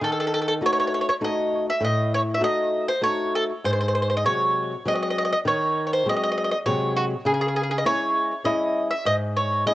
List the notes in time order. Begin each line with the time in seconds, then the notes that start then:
0.01 D#3 A4
0.12 A4
0.20 A4
0.27 A4
0.34 A4
0.42 A4
0.48 A4
0.61 A3 D#4 F#4
0.66 C#5
0.73 C#5
0.80 C#5
0.87 C#5
0.94 C#5
1.01 C#5
1.09 C#5
1.21 A3 D#4 F#4 D#5
1.70 E5
1.80 A2
1.85 D#5
2.14 C#5
2.35 E5
2.40 A3 D#4 F#4 D#5
2.88 C5
3.02 A3 D#4 F#4 C#5
3.35 A4
3.64 G#2 C5
3.73 C5
3.81 C5
3.88 C5
3.95 C5
4.02 C5
4.10 C5
4.17 D#5
4.25 C3 F#3 G#3 C#5
4.85 F#3 G#3 C4 D#5
4.95 D#5
5.03 D#5
5.10 D#5
5.18 D#5
5.25 D#5
5.33 D#5
5.45 D#3 C#5
5.87 C#5
5.93 C5
6.06 F#3 G#3 C4 D#5
6.16 D#5
6.23 D#5
6.32 D#5
6.38 D#5
6.44 D#5
6.51 D#5
6.66 C3 F#3 G#3 C#5
6.96 F#4
7.25 C#3 G#4
7.34 G#4
7.41 G#4
7.48 G#4
7.56 G#4
7.63 G#4
7.71 G#4
7.78 D#5
7.84 G#3 C#4 E4 C#5
8.44 G#3 C#4 E4 D#5
8.91 E5
9.05 G#2 D#5
9.37 C#5
9.66 G#3 C#4 E4 D#5